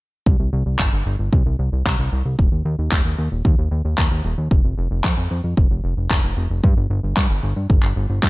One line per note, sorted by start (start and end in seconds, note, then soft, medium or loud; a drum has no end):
0.26 0.37 C2 medium
0.26 kick loud
0.40 0.50 C2 medium
0.53 0.64 C2 medium
0.66 0.77 C2 medium
0.79 0.90 G1 medium
0.79 kick medium
0.79 clap loud
0.93 1.03 G1 medium
1.06 1.17 G1 medium
1.19 1.30 G1 medium
1.33 1.43 C2 medium
1.33 kick loud
1.46 1.57 C2 medium
1.59 1.70 C2 medium
1.72 1.83 C2 medium
1.86 1.96 C2 loud
1.86 kick loud
1.86 clap loud
1.99 2.10 C2 medium
2.12 2.23 C2 medium
2.25 2.36 C2 medium
2.39 2.49 D#1 loud
2.39 kick loud
2.52 2.63 D#2 medium
2.65 2.76 D#2 medium
2.79 2.89 D#2 medium
2.92 3.03 D#1 loud
2.92 kick loud
2.92 clap loud
3.05 3.16 D#2 medium
3.18 3.29 D#2 medium
3.32 3.42 D#1 medium
3.45 3.56 D#2 loud
3.45 kick loud
3.58 3.69 D#2 medium
3.71 3.82 D#2 medium
3.85 3.95 D#2 medium
3.98 4.09 D#2 medium
3.98 kick loud
3.98 clap loud
4.11 4.22 D#2 medium
4.25 4.35 D#1 medium
4.38 4.49 D#2 medium
4.51 4.62 F1 loud
4.51 kick loud
4.64 4.75 F1 medium
4.78 4.88 F1 medium
4.91 5.02 F1 medium
5.04 5.15 F2 loud
5.04 kick loud
5.04 clap loud
5.17 5.28 F2 medium
5.31 5.41 F2 medium
5.44 5.55 F2 medium
5.57 5.68 F1 medium
5.57 kick loud
5.70 5.81 F1 medium
5.84 5.94 F1 medium
5.97 6.08 F1 medium
6.10 6.21 F1 loud
6.10 kick loud
6.10 clap loud
6.24 6.34 F1 medium
6.37 6.48 F1 medium
6.50 6.61 F1 medium
6.64 6.74 G2 loud
6.64 kick loud
6.77 6.87 G1 medium
6.90 7.01 G1 medium
7.03 7.14 G1 medium
7.17 7.27 G2 loud
7.17 kick loud
7.17 clap loud
7.30 7.41 G1 medium
7.43 7.54 G1 medium
7.56 7.67 G2 medium
7.70 7.80 G1 loud
7.70 kick loud
7.83 7.94 G1 medium
7.83 clap soft
7.96 8.07 G1 medium
8.10 8.20 G1 medium
8.23 8.30 G2 medium
8.23 kick loud
8.23 clap loud